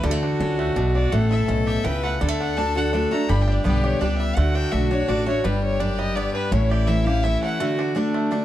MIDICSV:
0, 0, Header, 1, 6, 480
1, 0, Start_track
1, 0, Key_signature, 2, "major"
1, 0, Tempo, 359712
1, 59, Time_signature, 3, 2, 24, 8
1, 11274, End_track
2, 0, Start_track
2, 0, Title_t, "Fiddle"
2, 0, Program_c, 0, 110
2, 58, Note_on_c, 0, 69, 77
2, 1019, Note_off_c, 0, 69, 0
2, 1265, Note_on_c, 0, 74, 88
2, 1497, Note_on_c, 0, 78, 81
2, 1517, Note_off_c, 0, 74, 0
2, 1735, Note_off_c, 0, 78, 0
2, 1743, Note_on_c, 0, 76, 75
2, 1961, Note_off_c, 0, 76, 0
2, 2213, Note_on_c, 0, 76, 91
2, 2458, Note_on_c, 0, 79, 99
2, 2478, Note_off_c, 0, 76, 0
2, 2699, Note_off_c, 0, 79, 0
2, 2707, Note_on_c, 0, 78, 90
2, 2924, Note_off_c, 0, 78, 0
2, 3197, Note_on_c, 0, 78, 90
2, 3435, Note_on_c, 0, 81, 103
2, 3455, Note_off_c, 0, 78, 0
2, 3679, Note_off_c, 0, 81, 0
2, 3694, Note_on_c, 0, 78, 109
2, 3826, Note_off_c, 0, 78, 0
2, 4153, Note_on_c, 0, 82, 91
2, 4399, Note_on_c, 0, 83, 85
2, 4419, Note_off_c, 0, 82, 0
2, 4558, Note_on_c, 0, 79, 78
2, 4578, Note_off_c, 0, 83, 0
2, 4699, Note_on_c, 0, 74, 73
2, 4719, Note_off_c, 0, 79, 0
2, 4860, Note_on_c, 0, 71, 80
2, 4880, Note_off_c, 0, 74, 0
2, 5098, Note_off_c, 0, 71, 0
2, 5106, Note_on_c, 0, 73, 81
2, 5332, Note_on_c, 0, 74, 87
2, 5352, Note_off_c, 0, 73, 0
2, 5561, Note_off_c, 0, 74, 0
2, 5569, Note_on_c, 0, 76, 92
2, 5809, Note_on_c, 0, 78, 92
2, 5829, Note_off_c, 0, 76, 0
2, 6075, Note_on_c, 0, 79, 103
2, 6095, Note_off_c, 0, 78, 0
2, 6293, Note_on_c, 0, 76, 88
2, 6313, Note_off_c, 0, 79, 0
2, 6538, Note_off_c, 0, 76, 0
2, 6546, Note_on_c, 0, 73, 88
2, 6793, Note_on_c, 0, 74, 102
2, 6813, Note_off_c, 0, 73, 0
2, 7030, Note_off_c, 0, 74, 0
2, 7038, Note_on_c, 0, 73, 98
2, 7266, Note_on_c, 0, 71, 80
2, 7286, Note_off_c, 0, 73, 0
2, 7507, Note_off_c, 0, 71, 0
2, 7515, Note_on_c, 0, 73, 86
2, 7735, Note_on_c, 0, 74, 80
2, 7755, Note_off_c, 0, 73, 0
2, 7990, Note_on_c, 0, 75, 100
2, 8010, Note_off_c, 0, 74, 0
2, 8214, Note_on_c, 0, 74, 91
2, 8234, Note_off_c, 0, 75, 0
2, 8446, Note_off_c, 0, 74, 0
2, 8454, Note_on_c, 0, 71, 96
2, 8694, Note_on_c, 0, 73, 84
2, 8714, Note_off_c, 0, 71, 0
2, 8942, Note_on_c, 0, 74, 96
2, 8962, Note_off_c, 0, 73, 0
2, 9166, Note_on_c, 0, 76, 85
2, 9186, Note_off_c, 0, 74, 0
2, 9407, Note_on_c, 0, 77, 103
2, 9427, Note_off_c, 0, 76, 0
2, 9656, Note_on_c, 0, 76, 96
2, 9676, Note_off_c, 0, 77, 0
2, 9894, Note_off_c, 0, 76, 0
2, 9902, Note_on_c, 0, 78, 89
2, 10353, Note_off_c, 0, 78, 0
2, 11274, End_track
3, 0, Start_track
3, 0, Title_t, "Fiddle"
3, 0, Program_c, 1, 110
3, 70, Note_on_c, 1, 66, 109
3, 1497, Note_on_c, 1, 69, 114
3, 1517, Note_off_c, 1, 66, 0
3, 2467, Note_on_c, 1, 71, 115
3, 2487, Note_off_c, 1, 69, 0
3, 2935, Note_off_c, 1, 71, 0
3, 2943, Note_on_c, 1, 69, 116
3, 4390, Note_on_c, 1, 67, 94
3, 4410, Note_off_c, 1, 69, 0
3, 4860, Note_off_c, 1, 67, 0
3, 4868, Note_on_c, 1, 67, 103
3, 5547, Note_off_c, 1, 67, 0
3, 5837, Note_on_c, 1, 66, 101
3, 7262, Note_on_c, 1, 67, 99
3, 7282, Note_off_c, 1, 66, 0
3, 8704, Note_on_c, 1, 64, 102
3, 8724, Note_off_c, 1, 67, 0
3, 10133, Note_on_c, 1, 66, 105
3, 10153, Note_off_c, 1, 64, 0
3, 10630, Note_on_c, 1, 62, 88
3, 10650, Note_off_c, 1, 66, 0
3, 11274, Note_off_c, 1, 62, 0
3, 11274, End_track
4, 0, Start_track
4, 0, Title_t, "Five-string banjo"
4, 0, Program_c, 2, 105
4, 48, Note_on_c, 2, 55, 76
4, 146, Note_off_c, 2, 55, 0
4, 146, Note_on_c, 2, 57, 66
4, 305, Note_on_c, 2, 62, 61
4, 521, Note_off_c, 2, 62, 0
4, 533, Note_off_c, 2, 57, 0
4, 537, Note_on_c, 2, 62, 53
4, 785, Note_on_c, 2, 57, 67
4, 1001, Note_off_c, 2, 62, 0
4, 1017, Note_on_c, 2, 62, 56
4, 1254, Note_off_c, 2, 62, 0
4, 1270, Note_on_c, 2, 62, 54
4, 1495, Note_off_c, 2, 57, 0
4, 1501, Note_off_c, 2, 62, 0
4, 1501, Note_on_c, 2, 57, 65
4, 1746, Note_on_c, 2, 64, 62
4, 1978, Note_on_c, 2, 61, 58
4, 2181, Note_off_c, 2, 57, 0
4, 2228, Note_on_c, 2, 67, 46
4, 2414, Note_off_c, 2, 64, 0
4, 2464, Note_on_c, 2, 64, 67
4, 2660, Note_off_c, 2, 61, 0
4, 2715, Note_on_c, 2, 57, 51
4, 2895, Note_off_c, 2, 67, 0
4, 2943, Note_off_c, 2, 57, 0
4, 2944, Note_off_c, 2, 64, 0
4, 2949, Note_on_c, 2, 55, 67
4, 3048, Note_off_c, 2, 55, 0
4, 3048, Note_on_c, 2, 57, 71
4, 3210, Note_on_c, 2, 62, 65
4, 3426, Note_off_c, 2, 57, 0
4, 3443, Note_off_c, 2, 62, 0
4, 3443, Note_on_c, 2, 62, 58
4, 3686, Note_off_c, 2, 62, 0
4, 3686, Note_on_c, 2, 62, 46
4, 3904, Note_off_c, 2, 62, 0
4, 3910, Note_on_c, 2, 62, 66
4, 4169, Note_on_c, 2, 57, 56
4, 4389, Note_off_c, 2, 57, 0
4, 4395, Note_on_c, 2, 55, 73
4, 4634, Note_off_c, 2, 62, 0
4, 4639, Note_on_c, 2, 62, 56
4, 4870, Note_on_c, 2, 59, 55
4, 5071, Note_off_c, 2, 55, 0
4, 5119, Note_on_c, 2, 67, 52
4, 5350, Note_off_c, 2, 62, 0
4, 5356, Note_on_c, 2, 62, 63
4, 5548, Note_off_c, 2, 59, 0
4, 5603, Note_on_c, 2, 55, 54
4, 5783, Note_off_c, 2, 67, 0
4, 5830, Note_off_c, 2, 55, 0
4, 5835, Note_on_c, 2, 57, 77
4, 6068, Note_off_c, 2, 62, 0
4, 6074, Note_on_c, 2, 62, 61
4, 6289, Note_off_c, 2, 62, 0
4, 6305, Note_on_c, 2, 62, 54
4, 6511, Note_off_c, 2, 57, 0
4, 6537, Note_off_c, 2, 62, 0
4, 6553, Note_on_c, 2, 62, 59
4, 6770, Note_off_c, 2, 62, 0
4, 6786, Note_on_c, 2, 62, 66
4, 7028, Note_on_c, 2, 57, 52
4, 7255, Note_off_c, 2, 57, 0
4, 7260, Note_on_c, 2, 55, 76
4, 7267, Note_off_c, 2, 62, 0
4, 7740, Note_on_c, 2, 62, 61
4, 7943, Note_off_c, 2, 55, 0
4, 7990, Note_on_c, 2, 55, 67
4, 8223, Note_on_c, 2, 59, 66
4, 8423, Note_off_c, 2, 62, 0
4, 8471, Note_on_c, 2, 62, 54
4, 8657, Note_off_c, 2, 55, 0
4, 8699, Note_off_c, 2, 59, 0
4, 8704, Note_off_c, 2, 62, 0
4, 8705, Note_on_c, 2, 61, 67
4, 8959, Note_on_c, 2, 67, 64
4, 9181, Note_on_c, 2, 64, 54
4, 9384, Note_off_c, 2, 61, 0
4, 9416, Note_off_c, 2, 67, 0
4, 9432, Note_on_c, 2, 67, 51
4, 9642, Note_off_c, 2, 64, 0
4, 9658, Note_on_c, 2, 64, 70
4, 9910, Note_on_c, 2, 57, 55
4, 10096, Note_off_c, 2, 67, 0
4, 10138, Note_off_c, 2, 57, 0
4, 10140, Note_off_c, 2, 64, 0
4, 10144, Note_on_c, 2, 57, 71
4, 10392, Note_on_c, 2, 62, 69
4, 10603, Note_off_c, 2, 62, 0
4, 10619, Note_on_c, 2, 62, 53
4, 10821, Note_off_c, 2, 57, 0
4, 10867, Note_on_c, 2, 57, 64
4, 11084, Note_off_c, 2, 62, 0
4, 11100, Note_on_c, 2, 62, 65
4, 11274, Note_off_c, 2, 57, 0
4, 11274, Note_off_c, 2, 62, 0
4, 11274, End_track
5, 0, Start_track
5, 0, Title_t, "Steel-string acoustic guitar"
5, 0, Program_c, 3, 25
5, 46, Note_on_c, 3, 50, 99
5, 539, Note_on_c, 3, 61, 82
5, 967, Note_off_c, 3, 50, 0
5, 997, Note_off_c, 3, 61, 0
5, 1016, Note_on_c, 3, 47, 78
5, 1476, Note_off_c, 3, 47, 0
5, 1499, Note_on_c, 3, 45, 92
5, 1983, Note_on_c, 3, 47, 79
5, 2415, Note_off_c, 3, 45, 0
5, 2440, Note_off_c, 3, 47, 0
5, 2462, Note_on_c, 3, 49, 83
5, 2920, Note_off_c, 3, 49, 0
5, 2951, Note_on_c, 3, 50, 88
5, 3410, Note_off_c, 3, 50, 0
5, 3426, Note_on_c, 3, 50, 63
5, 3444, Note_on_c, 3, 57, 52
5, 3445, Note_on_c, 3, 62, 70
5, 3456, Note_on_c, 3, 66, 66
5, 3654, Note_off_c, 3, 66, 0
5, 3665, Note_off_c, 3, 50, 0
5, 3670, Note_on_c, 3, 66, 61
5, 3674, Note_off_c, 3, 57, 0
5, 3674, Note_off_c, 3, 62, 0
5, 3696, Note_on_c, 3, 62, 47
5, 3894, Note_off_c, 3, 66, 0
5, 3907, Note_off_c, 3, 62, 0
5, 3916, Note_on_c, 3, 50, 63
5, 3921, Note_on_c, 3, 57, 58
5, 3931, Note_on_c, 3, 62, 54
5, 3936, Note_on_c, 3, 66, 69
5, 4135, Note_off_c, 3, 66, 0
5, 4150, Note_off_c, 3, 50, 0
5, 4151, Note_on_c, 3, 66, 58
5, 4153, Note_off_c, 3, 57, 0
5, 4157, Note_off_c, 3, 62, 0
5, 4175, Note_on_c, 3, 62, 45
5, 4375, Note_off_c, 3, 66, 0
5, 4386, Note_off_c, 3, 62, 0
5, 4394, Note_on_c, 3, 43, 92
5, 4859, Note_on_c, 3, 50, 61
5, 4873, Note_on_c, 3, 55, 71
5, 4881, Note_on_c, 3, 59, 57
5, 4886, Note_on_c, 3, 67, 63
5, 5305, Note_off_c, 3, 43, 0
5, 5320, Note_off_c, 3, 50, 0
5, 5327, Note_off_c, 3, 55, 0
5, 5331, Note_off_c, 3, 59, 0
5, 5334, Note_off_c, 3, 67, 0
5, 5349, Note_on_c, 3, 55, 66
5, 5362, Note_on_c, 3, 59, 68
5, 5366, Note_on_c, 3, 67, 64
5, 5805, Note_off_c, 3, 55, 0
5, 5812, Note_off_c, 3, 59, 0
5, 5814, Note_off_c, 3, 67, 0
5, 5825, Note_on_c, 3, 50, 88
5, 6274, Note_off_c, 3, 50, 0
5, 6290, Note_on_c, 3, 50, 60
5, 6301, Note_on_c, 3, 57, 53
5, 6309, Note_on_c, 3, 62, 57
5, 6319, Note_on_c, 3, 66, 59
5, 6531, Note_off_c, 3, 66, 0
5, 6538, Note_off_c, 3, 50, 0
5, 6544, Note_off_c, 3, 57, 0
5, 6548, Note_off_c, 3, 62, 0
5, 6548, Note_on_c, 3, 66, 59
5, 6576, Note_on_c, 3, 62, 46
5, 6773, Note_on_c, 3, 50, 48
5, 6774, Note_off_c, 3, 62, 0
5, 6774, Note_off_c, 3, 66, 0
5, 6782, Note_on_c, 3, 57, 59
5, 6790, Note_on_c, 3, 62, 57
5, 6802, Note_on_c, 3, 66, 67
5, 7007, Note_off_c, 3, 66, 0
5, 7020, Note_off_c, 3, 50, 0
5, 7023, Note_on_c, 3, 66, 62
5, 7025, Note_off_c, 3, 57, 0
5, 7029, Note_off_c, 3, 62, 0
5, 7049, Note_on_c, 3, 62, 49
5, 7252, Note_off_c, 3, 66, 0
5, 7265, Note_off_c, 3, 62, 0
5, 7267, Note_on_c, 3, 43, 94
5, 7738, Note_off_c, 3, 43, 0
5, 7744, Note_on_c, 3, 42, 83
5, 8202, Note_off_c, 3, 42, 0
5, 8230, Note_on_c, 3, 43, 82
5, 8685, Note_off_c, 3, 43, 0
5, 8700, Note_on_c, 3, 45, 93
5, 9170, Note_on_c, 3, 52, 66
5, 9182, Note_on_c, 3, 57, 55
5, 9193, Note_on_c, 3, 61, 59
5, 9200, Note_on_c, 3, 64, 63
5, 9401, Note_off_c, 3, 64, 0
5, 9417, Note_off_c, 3, 52, 0
5, 9417, Note_on_c, 3, 64, 53
5, 9423, Note_off_c, 3, 57, 0
5, 9428, Note_off_c, 3, 61, 0
5, 9446, Note_on_c, 3, 61, 47
5, 9616, Note_off_c, 3, 45, 0
5, 9647, Note_off_c, 3, 64, 0
5, 9655, Note_off_c, 3, 61, 0
5, 9655, Note_on_c, 3, 52, 51
5, 9670, Note_on_c, 3, 57, 59
5, 9671, Note_on_c, 3, 61, 67
5, 9686, Note_on_c, 3, 64, 67
5, 10116, Note_off_c, 3, 52, 0
5, 10123, Note_off_c, 3, 57, 0
5, 10124, Note_off_c, 3, 61, 0
5, 10131, Note_off_c, 3, 64, 0
5, 10146, Note_on_c, 3, 50, 92
5, 10589, Note_off_c, 3, 50, 0
5, 10605, Note_on_c, 3, 50, 60
5, 10618, Note_on_c, 3, 57, 58
5, 10626, Note_on_c, 3, 62, 61
5, 10628, Note_on_c, 3, 66, 71
5, 11069, Note_off_c, 3, 50, 0
5, 11075, Note_off_c, 3, 57, 0
5, 11079, Note_off_c, 3, 62, 0
5, 11080, Note_off_c, 3, 66, 0
5, 11086, Note_on_c, 3, 50, 53
5, 11093, Note_on_c, 3, 57, 51
5, 11105, Note_on_c, 3, 62, 62
5, 11110, Note_on_c, 3, 66, 58
5, 11274, Note_off_c, 3, 50, 0
5, 11274, Note_off_c, 3, 57, 0
5, 11274, Note_off_c, 3, 62, 0
5, 11274, Note_off_c, 3, 66, 0
5, 11274, End_track
6, 0, Start_track
6, 0, Title_t, "Upright bass"
6, 0, Program_c, 4, 32
6, 46, Note_on_c, 4, 38, 85
6, 419, Note_off_c, 4, 38, 0
6, 533, Note_on_c, 4, 37, 80
6, 944, Note_off_c, 4, 37, 0
6, 1012, Note_on_c, 4, 35, 75
6, 1424, Note_off_c, 4, 35, 0
6, 1504, Note_on_c, 4, 33, 93
6, 1871, Note_off_c, 4, 33, 0
6, 1982, Note_on_c, 4, 35, 72
6, 2391, Note_off_c, 4, 35, 0
6, 2467, Note_on_c, 4, 37, 71
6, 2874, Note_off_c, 4, 37, 0
6, 2957, Note_on_c, 4, 38, 91
6, 4058, Note_off_c, 4, 38, 0
6, 4398, Note_on_c, 4, 31, 94
6, 4762, Note_off_c, 4, 31, 0
6, 4873, Note_on_c, 4, 35, 76
6, 5278, Note_off_c, 4, 35, 0
6, 5352, Note_on_c, 4, 37, 80
6, 5759, Note_off_c, 4, 37, 0
6, 5832, Note_on_c, 4, 38, 93
6, 6199, Note_off_c, 4, 38, 0
6, 6314, Note_on_c, 4, 35, 79
6, 6720, Note_off_c, 4, 35, 0
6, 6780, Note_on_c, 4, 33, 74
6, 7192, Note_off_c, 4, 33, 0
6, 7265, Note_on_c, 4, 31, 89
6, 8369, Note_off_c, 4, 31, 0
6, 8694, Note_on_c, 4, 33, 98
6, 9801, Note_off_c, 4, 33, 0
6, 11274, End_track
0, 0, End_of_file